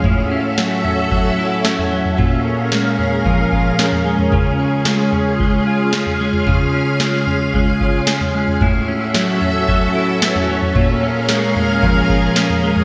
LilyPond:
<<
  \new Staff \with { instrumentName = "String machine" } { \time 4/4 \key des \major \tempo 4 = 112 << { <fis' a' e''>1 | <aes' bes' f''>1 | <f' f''>1~ | <f' f''>1 |
<fis' a' e''>1 | <aes' bes' f''>1 | } \\ { des'1~ | des'1~ | des'1~ | des'1 |
cis'1~ | cis'1 | } >> }
  \new Staff \with { instrumentName = "Clean electric guitar" } { \time 4/4 \key des \major <a, e'>8 cis'8 fis8 cis'8 fis8 e'8 cis'8 fis8 | <bes, f'>8 des'8 aes8 des'8 f8 f'8 des'8 aes8 | <des f'>8 des'8 aes8 des'8 aes8 f'8 des'8 aes8 | <des f'>8 des'8 aes8 des'8 aes8 f'8 des'8 aes8 |
<a, e'>8 cis'8 fis8 cis'8 fis8 e'8 ces'16 cis'16 fis8 | <bes, f'>8 des'8 aes8 des'8 f8 f'8 des'8 aes8 | }
  \new DrumStaff \with { instrumentName = "Drums" } \drummode { \time 4/4 <bd tomfh>4 sn8 tomfh8 <bd tomfh>4 sn16 tomfh8 tomfh16 | <bd tomfh>4 sn8 tomfh8 <bd tomfh>8 bd8 sn16 tomfh8 tomfh16 | <bd tomfh>4 sn8 tomfh8 <bd tomfh>4 sn16 tomfh8 tomfh16 | <bd tomfh>4 sn8 tomfh8 <bd tomfh>8 bd8 sn16 tomfh8 tomfh16 |
<bd tomfh>4 sn8 tomfh8 <bd tomfh>4 sn16 tomfh8 tomfh16 | <bd tomfh>4 sn8 tomfh8 <bd tomfh>8 bd8 sn16 tomfh8 tomfh16 | }
>>